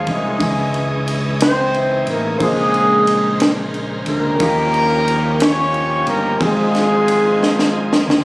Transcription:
Already playing: tonewheel organ D#3 F3 C#4 G#4, grand piano D#3 F3 A#3 C#4 G#4 D#5, horn section G#3 C#4
0.07 fingered electric bass C2, horn section G#3 D#4 E4 G#4, kick, ride
0.36 grand piano C#3 G#3 C#4 D#5
0.41 fingered electric bass C#2, tonewheel organ D#3 C#4 G#4 D#5, grand piano E3 G#4, kick, ride
0.47 tonewheel organ E3
0.74 ride
1.08 ride
1.40 horn section C4 D#4 E4 C5, snare, ride
1.74 ride
2.07 fingered electric bass A1, horn section A#3 A#4, ride
2.36 grand piano A#2 C#3 A#3 C5
2.40 fingered electric bass A#1, tonewheel organ C#3 G#3 A4 C5, grand piano G#3 F4, horn section G#3 C4 C#4 G#4, kick, ride
2.48 tonewheel organ A#4
2.74 ride
3.07 ride
3.40 snare, ride
3.74 ride
4.06 fingered electric bass D2, horn section A#3 C#4 G4 A#4, ride
4.36 grand piano D#3 A#3 C#4 D#4, ride
4.40 fingered electric bass D#2, tonewheel organ F3 C#4 D#4 G4, grand piano F4 G4, kick
4.74 ride
5.08 ride
5.40 horn section C#4 F4 G4 C#5, snare, ride
5.74 ride
6.07 fingered electric bass G1, horn section A#3 A#4, ride
6.37 fingered electric bass G#1, grand piano G#2 G#3 C4 D#4, tonewheel organ D#4, kick, ride
6.41 tonewheel organ F3 C4 G4, horn section G#3 C4 F4 G#4, grand piano F4 G#4
6.48 tonewheel organ G#4
6.75 snare, ride
7.08 ride
7.43 snare
7.59 snare
7.93 snare
8.07 fingered electric bass D2, snare

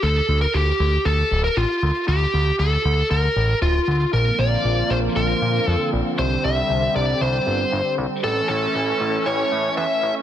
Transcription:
0.03 analog synth bass D2, lead electric guitar A4
0.29 analog synth bass D2
0.41 lead electric guitar A#4
0.54 analog synth bass D2, lead electric guitar G4
0.80 analog synth bass D2
1.05 analog synth bass D2, lead electric guitar A4
1.31 analog synth bass D1
1.44 lead electric guitar A#4
1.57 analog synth bass A1, lead electric guitar F4
1.83 analog synth bass D2
2.08 analog synth bass D2, lead electric guitar G4
2.34 analog synth bass D2
2.59 analog synth bass D2, lead electric guitar A4
2.85 analog synth bass D2
3.11 analog synth bass D2, lead electric guitar A#4
3.36 analog synth bass A1
3.62 analog synth bass D1, lead electric guitar F4
3.88 analog synth bass D2
4.13 analog synth bass A#1, analog synth pad D3 F3 A#3 C4 F4, lead electric guitar A#4
4.39 analog synth bass A#1, lead electric guitar D5
4.65 analog synth bass A#1
4.90 analog synth bass A#1, lead electric guitar C5
5.16 analog synth bass A#1, lead electric guitar A#4
5.42 analog synth bass A#2
5.66 analog synth bass F2, lead electric guitar A4
5.93 analog synth bass A#1
6.18 analog synth bass C2, analog synth pad G3, lead electric guitar C5
6.44 analog synth bass C2, lead electric guitar E5
6.70 analog synth bass C2
6.95 analog synth bass C2, lead electric guitar D5
7.21 analog synth bass C2, lead electric guitar C5
7.47 analog synth bass G1
7.72 analog synth bass G1
7.98 analog synth bass C2
8.23 analog synth bass A1, analog synth pad E3 A3 C#4, lead electric guitar A4
8.49 analog synth bass A1, lead electric guitar A4
8.75 analog synth bass A1
9.00 analog synth bass A1
9.26 analog synth bass A1, lead electric guitar C#5
9.52 analog synth bass A2
9.77 analog synth bass E2, lead electric guitar E5
10.03 analog synth bass A1

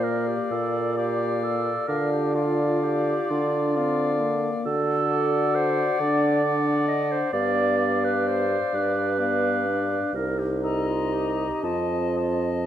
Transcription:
Already playing: bassoon A#2, french horn A#3, oboe D5, flute F5
0.03 clarinet A#4
0.28 clarinet G4
0.51 bassoon A#2, clarinet A4
0.97 clarinet G4, oboe D5, flute F5
1.43 clarinet A4
1.88 bassoon D3, french horn F4, clarinet A#4, oboe D5, flute F5
2.12 clarinet G4
2.35 clarinet F4, oboe D5, flute F5
2.83 clarinet G4
3.30 bassoon D3, french horn D4, clarinet F4
3.75 french horn C4, oboe D5, flute F5
4.20 french horn A#3
4.65 bassoon D3, french horn F#4, clarinet A4
5.11 oboe D5, flute F#5
5.55 clarinet C5
5.99 bassoon D3, french horn D4, clarinet D5
6.43 oboe D5, flute F#5
6.88 clarinet D#5
7.11 clarinet C5
7.33 bassoon G2, french horn B3, clarinet D5, oboe D5, flute F5
7.80 oboe D5, flute F5
8.04 clarinet B4
8.27 clarinet C5
8.73 bassoon G2, french horn D4, clarinet B4
9.19 french horn B3, oboe D5, flute F5
9.67 french horn D4
10.14 bassoon C2, french horn D#4, clarinet A#4
10.39 clarinet G4
10.63 clarinet A4, oboe D#5, flute A#5
10.88 clarinet F4
11.12 clarinet G4
11.63 bassoon F2, french horn C4, clarinet F4, oboe D#5, flute A5
12.16 oboe D#5, flute A5

